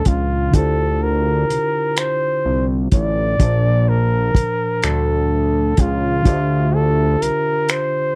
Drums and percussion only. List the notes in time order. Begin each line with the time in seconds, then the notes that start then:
0.05 kick, closed hi-hat
0.54 kick, closed hi-hat
1.50 closed hi-hat
1.97 finger snap, closed hi-hat
2.92 kick, closed hi-hat
3.40 kick, closed hi-hat
4.35 kick, closed hi-hat
4.82 finger snap, closed hi-hat
5.77 kick, closed hi-hat
6.25 kick, closed hi-hat
7.22 closed hi-hat
7.68 finger snap, closed hi-hat